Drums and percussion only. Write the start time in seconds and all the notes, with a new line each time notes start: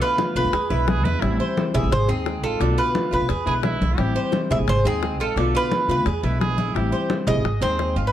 0.02 high conga
0.18 high bongo, high conga
0.36 high bongo
0.53 high bongo, high conga
0.71 high bongo, high conga
0.88 high bongo, low bongo, high conga
1.05 high bongo, high conga
1.22 high bongo, high conga
1.40 high bongo, high conga
1.57 high bongo, high conga
1.75 high bongo, high conga, low conga
1.92 high bongo, high conga, low conga
2.10 high conga
2.26 high bongo, low bongo, high conga
2.43 high bongo, high conga
2.61 high bongo, high conga
2.78 high conga
2.95 high bongo, high conga
3.13 high bongo
3.29 high bongo, high conga
3.46 high bongo, high conga
3.63 high bongo, low bongo, high conga
3.81 high bongo, high conga
3.98 high bongo, high conga
4.16 high bongo, high conga
4.32 high bongo, high conga
4.50 high bongo, high conga, low conga
4.68 high bongo, high conga, low conga
4.85 high conga
5.02 high bongo, low bongo, high conga
5.20 high bongo, high conga
5.37 high bongo, high conga
5.54 high conga
5.72 high bongo, high conga
5.89 high bongo
6.06 high bongo, high conga
6.24 high bongo, high conga
6.41 high bongo, low bongo, high conga
6.58 high bongo, high conga
6.75 high bongo, high conga
6.93 high bongo, high conga
7.10 high bongo, high conga
7.27 high bongo, high conga, low conga
7.45 high bongo, high conga
7.63 high conga
7.79 high bongo, low bongo, high conga
7.97 high bongo, high conga